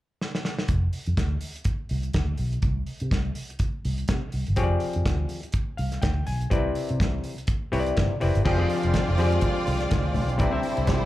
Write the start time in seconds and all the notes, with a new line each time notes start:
0.21 snare
0.35 snare
0.45 snare
0.59 snare
0.68 F1, kick, closed hi-hat
0.93 open hi-hat
1.06 F2, closed hi-hat
1.17 D2, kick, snare, closed hi-hat
1.41 open hi-hat
1.56 closed hi-hat
1.64 kick, closed hi-hat
1.89 C2, open hi-hat
2.03 closed hi-hat
2.13 D2, kick, snare, closed hi-hat
2.38 B1, open hi-hat
2.53 closed hi-hat
2.62 C2, kick, closed hi-hat
2.87 open hi-hat
3.00 C3, closed hi-hat
3.11 C2, kick, snare, closed hi-hat
3.35 open hi-hat
3.50 closed hi-hat
3.59 kick, closed hi-hat
3.85 C2, open hi-hat
3.98 closed hi-hat
4.08 C3, kick, snare, closed hi-hat
4.32 C2, open hi-hat
4.47 G1, closed hi-hat
4.56 F1 F3 C4 G4 G#4 C#5, kick, closed hi-hat
4.63 D5
4.80 open hi-hat
4.93 F2, closed hi-hat
5.06 D2, kick, snare, closed hi-hat
5.29 open hi-hat
5.43 closed hi-hat
5.52 kick, closed hi-hat
5.77 C2 F5, open hi-hat
5.92 snare, closed hi-hat
6.02 D2 G5, kick, snare, closed hi-hat
6.27 B1 G#5, open hi-hat
6.41 closed hi-hat
6.50 C2 C3 C4 E4 B4 D5, kick, closed hi-hat
6.75 open hi-hat
6.89 C3, closed hi-hat
7.00 C2, kick, snare, closed hi-hat
7.24 open hi-hat
7.38 closed hi-hat
7.47 kick, closed hi-hat
7.72 C2 C3 C4 E4 B4 C#5, open hi-hat
7.79 D5
7.86 closed hi-hat
7.97 G1, kick, snare, closed hi-hat
8.20 F1 C3 C4 E4 B4 D5, open hi-hat
8.35 G1, closed hi-hat
8.45 F1 D3 F3 G#3 C4 F4 G4 G#4 D5, kick, crash, muted conga
8.58 F3 C4 G4 G#4 D5
8.69 open hi-hat
8.83 F1, closed hi-hat
8.94 kick, snare, closed hi-hat, high conga
9.08 F1
9.18 F2 F3 C4 G4 G#4 D5, open hi-hat, muted conga
9.32 closed hi-hat
9.41 kick, closed hi-hat, muted conga
9.67 C2, open hi-hat
9.80 snare, closed hi-hat
9.91 D2, kick, snare, closed hi-hat, high conga
10.14 B1, open hi-hat, high conga
10.28 closed hi-hat, high conga
10.38 C2 C3 D3 G3 C4 D4 E4 B4 C5 D5, kick, closed hi-hat, muted conga
10.51 C3 C4 E4 C5 E5
10.63 open hi-hat
10.77 C2, closed hi-hat
10.87 kick, snare, closed hi-hat, high conga
11.02 C2